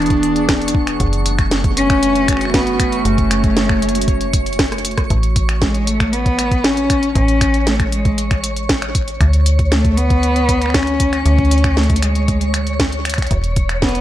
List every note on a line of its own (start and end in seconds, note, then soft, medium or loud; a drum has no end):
0.00 0.98 E1 medium
0.00 5.10 E3 medium
0.00 2.64 B3 medium
0.00 0.70 D4 medium
0.00 1.00 D4 medium
0.00 2.64 G#4 medium
0.00 1.00 D5 medium
0.00 5.11 C#6 medium
0.00 closed hi-hat soft
0.06 closed hi-hat soft
0.10 kick loud
0.10 closed hi-hat soft
0.23 closed hi-hat medium
0.36 closed hi-hat soft
0.49 finger snap medium
0.49 kick loud
0.49 snare loud
0.49 closed hi-hat medium
0.62 closed hi-hat soft
0.68 closed hi-hat medium
0.74 kick loud
0.87 finger snap medium
0.87 closed hi-hat soft
1.00 3.03 F#1 medium
1.00 kick loud
1.00 closed hi-hat medium
1.09 5.10 A3 medium
1.09 closed hi-hat soft
1.26 closed hi-hat medium
1.39 finger snap medium
1.39 kick loud
1.39 closed hi-hat soft
1.51 snare loud
1.51 closed hi-hat medium
1.64 kick loud
1.64 closed hi-hat soft
1.77 2.50 C#4 loud
1.77 closed hi-hat medium
1.82 5.10 F#4 medium
1.90 5.10 C#4 medium
1.90 finger snap medium
1.90 kick loud
1.90 closed hi-hat soft
2.03 closed hi-hat medium
2.16 closed hi-hat soft
2.28 finger snap medium
2.28 kick loud
2.28 closed hi-hat medium
2.33 finger snap soft
2.37 finger snap soft
2.41 finger snap soft
2.41 closed hi-hat soft
2.45 finger snap soft
2.50 finger snap soft
2.54 3.06 B3 loud
2.54 kick loud
2.54 snare loud
2.54 closed hi-hat medium
2.67 closed hi-hat soft
2.80 5.10 C#5 medium
2.80 finger snap medium
2.80 kick loud
2.80 closed hi-hat medium
2.92 closed hi-hat soft
3.05 5.08 F#1 medium
3.05 4.59 A3 medium
3.05 closed hi-hat medium
3.18 kick loud
3.18 closed hi-hat soft
3.31 finger snap medium
3.31 closed hi-hat medium
3.44 kick loud
3.44 closed hi-hat soft
3.57 snare loud
3.57 closed hi-hat medium
3.69 finger snap medium
3.69 kick loud
3.82 closed hi-hat soft
3.89 closed hi-hat medium
3.95 closed hi-hat medium
4.01 closed hi-hat medium
4.08 kick loud
4.08 closed hi-hat medium
4.21 closed hi-hat soft
4.33 kick loud
4.33 closed hi-hat loud
4.46 closed hi-hat soft
4.53 closed hi-hat soft
4.59 kick loud
4.59 cross-stick medium
4.59 snare loud
4.59 closed hi-hat medium
4.65 closed hi-hat soft
4.72 cross-stick medium
4.72 closed hi-hat soft
4.78 closed hi-hat soft
4.85 closed hi-hat medium
4.91 closed hi-hat soft
4.98 kick loud
4.98 cross-stick medium
4.98 closed hi-hat soft
5.10 7.13 A1 medium
5.10 14.01 C#5 medium
5.10 kick loud
5.10 closed hi-hat medium
5.23 closed hi-hat soft
5.36 kick loud
5.36 closed hi-hat medium
5.49 finger snap medium
5.49 closed hi-hat soft
5.62 5.89 G#3 medium
5.62 kick loud
5.62 snare loud
5.62 closed hi-hat medium
5.75 closed hi-hat soft
5.87 6.14 A3 loud
5.87 closed hi-hat medium
6.00 finger snap medium
6.00 kick loud
6.00 closed hi-hat soft
6.13 6.66 B3 loud
6.13 closed hi-hat medium
6.26 kick loud
6.26 closed hi-hat soft
6.39 finger snap medium
6.39 closed hi-hat loud
6.51 kick loud
6.51 closed hi-hat soft
6.64 7.15 C#4 loud
6.64 snare loud
6.64 closed hi-hat medium
6.77 closed hi-hat soft
6.90 finger snap medium
6.90 kick loud
6.90 closed hi-hat medium
7.03 closed hi-hat soft
7.15 9.18 A1 medium
7.15 7.68 C#4 loud
7.15 kick loud
7.15 closed hi-hat medium
7.28 closed hi-hat soft
7.41 finger snap medium
7.41 kick loud
7.41 closed hi-hat loud
7.54 closed hi-hat soft
7.67 7.92 A3 medium
7.67 snare loud
7.67 closed hi-hat medium
7.80 finger snap medium
7.80 kick loud
7.80 closed hi-hat soft
7.92 8.40 G#3 medium
7.92 closed hi-hat medium
8.05 kick loud
8.05 closed hi-hat soft
8.18 closed hi-hat medium
8.31 finger snap medium
8.31 kick loud
8.31 closed hi-hat soft
8.44 closed hi-hat loud
8.57 closed hi-hat soft
8.69 kick loud
8.69 snare loud
8.69 closed hi-hat medium
8.82 finger snap medium
8.82 closed hi-hat soft
8.95 kick loud
8.95 closed hi-hat loud
9.08 closed hi-hat soft
9.21 11.23 D2 medium
9.21 finger snap soft
9.21 kick loud
9.21 closed hi-hat medium
9.33 closed hi-hat soft
9.46 closed hi-hat medium
9.59 kick loud
9.59 closed hi-hat soft
9.72 9.99 A3 loud
9.72 finger snap soft
9.72 snare loud
9.72 closed hi-hat medium
9.85 kick loud
9.85 closed hi-hat soft
9.97 10.76 B3 loud
9.97 closed hi-hat medium
10.10 kick loud
10.10 closed hi-hat soft
10.23 closed hi-hat medium
10.36 closed hi-hat soft
10.49 kick loud
10.49 closed hi-hat medium
10.62 finger snap soft
10.62 closed hi-hat soft
10.66 finger snap soft
10.70 11.25 C#4 loud
10.70 finger snap soft
10.74 finger snap soft
10.74 kick loud
10.74 snare loud
10.74 closed hi-hat medium
10.79 finger snap soft
10.83 finger snap soft
10.87 closed hi-hat soft
11.00 kick loud
11.00 closed hi-hat medium
11.13 finger snap medium
11.13 closed hi-hat soft
11.25 13.28 D2 medium
11.25 11.78 C#4 loud
11.25 closed hi-hat medium
11.38 kick loud
11.38 closed hi-hat soft
11.45 closed hi-hat soft
11.51 closed hi-hat medium
11.58 closed hi-hat soft
11.64 finger snap medium
11.64 kick loud
11.64 closed hi-hat soft
11.77 12.04 A3 medium
11.77 snare loud
11.77 closed hi-hat soft
11.83 closed hi-hat soft
11.90 kick loud
11.90 closed hi-hat soft
11.96 closed hi-hat medium
12.02 12.54 G#3 medium
12.02 finger snap soft
12.02 closed hi-hat medium
12.15 closed hi-hat soft
12.28 kick loud
12.28 closed hi-hat medium
12.41 closed hi-hat soft
12.54 finger snap soft
12.54 closed hi-hat medium
12.67 closed hi-hat soft
12.80 kick loud
12.80 snare loud
12.80 closed hi-hat medium
12.92 closed hi-hat soft
13.05 finger snap medium
13.05 closed hi-hat medium
13.10 closed hi-hat medium
13.14 finger snap medium
13.14 closed hi-hat medium
13.18 kick loud
13.18 closed hi-hat soft
13.22 finger snap soft
13.22 closed hi-hat soft
13.27 closed hi-hat soft
13.31 14.01 E1 medium
13.31 kick loud
13.31 closed hi-hat medium
13.44 closed hi-hat soft
13.56 kick loud
13.56 closed hi-hat medium
13.69 finger snap medium
13.69 closed hi-hat soft
13.82 14.01 B3 loud
13.82 kick loud
13.82 snare loud
13.82 closed hi-hat soft
13.89 closed hi-hat soft
13.95 closed hi-hat soft